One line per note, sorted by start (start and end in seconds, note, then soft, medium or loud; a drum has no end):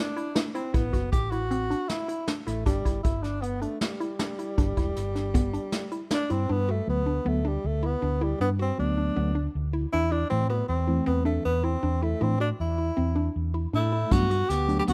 0.00 0.35 D4 medium
0.16 0.32 E4 medium
0.16 closed hi-hat soft
0.35 0.51 D4 medium
0.35 snare medium
0.35 closed hi-hat medium
0.54 0.75 C4 medium
0.54 0.70 E4 medium
0.54 closed hi-hat medium
0.74 0.89 A1 medium
0.74 1.11 B3 loud
0.74 0.89 E4 medium
0.74 kick medium
0.74 closed hi-hat medium
0.93 1.09 F#1 medium
0.93 1.23 F#4 medium
0.93 kick medium
0.93 closed hi-hat soft
1.12 1.72 A1 medium
1.12 1.32 G4 medium
1.12 kick medium
1.12 closed hi-hat medium
1.31 1.47 E4 medium
1.31 1.90 F#4 medium
1.31 closed hi-hat soft
1.51 1.66 C4 medium
1.51 closed hi-hat medium
1.70 2.00 D4 medium
1.70 closed hi-hat medium
1.89 2.28 E4 loud
1.89 snare medium
1.89 closed hi-hat medium
2.08 2.24 E4 medium
2.08 closed hi-hat medium
2.28 2.43 D4 medium
2.28 snare loud
2.28 closed hi-hat medium
2.46 2.62 A1 medium
2.46 2.65 A3 medium
2.46 2.62 E4 medium
2.46 snare soft
2.46 closed hi-hat medium
2.66 2.81 G1 medium
2.66 3.02 G3 medium
2.66 2.81 D4 medium
2.66 kick medium
2.66 closed hi-hat medium
2.85 3.00 G1 medium
2.85 3.15 E4 medium
2.85 kick medium
2.85 closed hi-hat medium
3.03 3.64 G1 medium
3.03 3.24 E4 medium
3.03 kick medium
3.03 closed hi-hat medium
3.22 3.43 D4 medium
3.22 3.38 D4 medium
3.22 snare soft
3.22 closed hi-hat medium
3.42 3.62 B3 medium
3.42 3.58 B3 medium
3.42 closed hi-hat medium
3.61 3.81 A3 medium
3.61 3.92 D4 medium
3.61 closed hi-hat medium
3.81 6.07 G3 medium
3.81 snare loud
3.81 closed hi-hat medium
4.00 4.16 E4 medium
4.00 closed hi-hat medium
4.19 4.35 D4 medium
4.19 snare medium
4.19 closed hi-hat medium
4.39 4.54 E4 medium
4.39 closed hi-hat medium
4.58 4.73 G1 medium
4.58 4.73 D4 medium
4.58 kick loud
4.58 closed hi-hat medium
4.77 4.92 E1 medium
4.77 5.07 E4 medium
4.77 kick medium
4.77 closed hi-hat medium
4.96 5.57 G1 medium
4.96 snare soft
4.96 closed hi-hat medium
5.15 5.31 D4 medium
5.15 snare soft
5.15 closed hi-hat medium
5.34 5.50 B3 medium
5.34 kick loud
5.34 closed hi-hat medium
5.53 5.84 D4 medium
5.53 closed hi-hat medium
5.72 snare loud
5.72 closed hi-hat medium
5.91 6.07 E4 medium
5.91 closed hi-hat medium
6.11 6.26 D4 medium
6.11 6.33 D4 medium
6.11 snare loud
6.11 closed hi-hat medium
6.30 6.46 G2 medium
6.30 6.53 C4 medium
6.30 6.45 E4 medium
6.30 closed hi-hat medium
6.49 6.80 G2 medium
6.49 6.72 B3 medium
6.49 6.65 D4 medium
6.69 6.89 A3 medium
6.69 6.99 F#4 medium
6.87 7.18 D2 medium
6.87 7.01 F#3 medium
6.87 7.01 A3 medium
6.87 7.01 B3 medium
6.87 7.29 B3 medium
7.06 7.22 D4 medium
7.25 7.56 D2 medium
7.25 7.39 F#3 medium
7.25 7.39 A3 medium
7.25 7.49 A3 medium
7.25 7.39 B3 medium
7.25 7.41 B3 medium
7.45 7.68 G3 medium
7.45 7.75 D4 medium
7.64 7.94 D2 medium
7.64 7.87 A3 medium
7.83 8.24 B3 medium
7.83 7.98 E4 medium
8.02 8.32 D2 medium
8.02 8.17 D4 medium
8.21 8.40 G3 medium
8.21 8.36 E4 medium
8.40 8.70 G2 medium
8.40 8.49 B3 medium
8.40 8.56 D4 medium
8.59 8.78 C4 medium
8.59 8.89 F#4 medium
8.78 9.09 D2 medium
8.78 9.16 F#3 medium
8.78 9.17 A3 medium
8.78 9.16 B3 medium
8.78 9.51 D4 medium
8.98 9.13 D4 medium
9.16 9.47 D2 medium
9.16 9.30 F#3 medium
9.16 9.31 A3 medium
9.16 9.32 B3 medium
9.16 9.31 B3 medium
9.35 9.65 D4 medium
9.55 9.85 D2 medium
9.73 9.89 E4 medium
9.93 10.23 E2 medium
9.93 10.08 D4 medium
9.93 10.13 E4 loud
10.11 10.29 D4 medium
10.11 10.27 E4 medium
10.30 10.61 A2 medium
10.30 10.44 E3 medium
10.30 10.45 A3 medium
10.30 10.48 C4 loud
10.30 10.45 C4 medium
10.30 10.46 E4 medium
10.50 10.68 B3 medium
10.50 10.80 F#4 medium
10.69 10.99 E2 medium
10.69 11.04 C4 medium
10.87 11.41 E3 medium
10.87 11.42 A3 medium
10.87 11.42 C4 medium
10.87 11.03 E4 medium
11.06 11.37 E2 medium
11.06 11.25 B3 medium
11.06 11.22 C4 medium
11.25 11.44 A3 medium
11.25 11.55 D4 medium
11.45 11.75 E2 medium
11.45 11.65 B3 medium
11.64 12.04 C4 medium
11.64 11.79 E4 medium
11.83 12.13 E2 medium
11.83 11.98 D4 medium
12.02 12.23 A3 medium
12.02 12.17 E4 medium
12.21 12.51 A2 medium
12.21 12.34 E3 medium
12.21 12.34 A3 medium
12.21 12.40 C4 medium
12.21 12.35 D4 medium
12.21 12.36 E4 medium
12.40 12.49 D4 medium
12.40 12.70 F#4 medium
12.60 12.89 E2 medium
12.60 13.32 E4 medium
12.78 12.93 E4 medium
12.97 13.27 E2 medium
12.97 13.12 C4 medium
13.16 13.46 D4 medium
13.36 13.65 E2 medium
13.54 13.69 E4 medium
13.73 14.03 A2 medium
13.73 14.13 A3 medium
13.73 13.88 D4 medium
13.73 14.14 E4 medium
13.92 14.07 E4 medium
14.11 14.41 G2 medium
14.11 14.25 F#3 medium
14.11 14.25 A3 medium
14.11 14.25 B3 medium
14.11 14.50 B3 medium
14.11 14.26 D4 medium
14.11 14.52 F#4 loud
14.11 kick medium
14.11 closed hi-hat medium
14.31 14.61 F#4 medium
14.31 closed hi-hat medium
14.50 14.79 D2 medium
14.50 14.78 B3 medium
14.50 14.78 G4 medium
14.50 snare soft
14.50 closed hi-hat medium
14.68 14.93 F#3 medium
14.68 14.93 A3 medium
14.68 14.93 D4 medium
14.68 14.84 D4 medium
14.68 closed hi-hat medium
14.79 14.83 B3 medium
14.79 14.83 G4 medium
14.88 14.93 D2 medium
14.88 14.93 B3 medium
14.88 14.93 F#4 medium
14.88 closed hi-hat medium